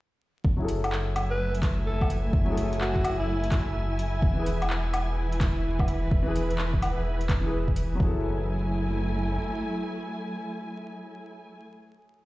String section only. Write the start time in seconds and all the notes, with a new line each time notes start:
0.44 F#3
0.83 E4
0.89 G#5
1.32 A3
4.23 E3
5.16 B4
8.00 F#3
8.09 E4
8.18 A3 G#5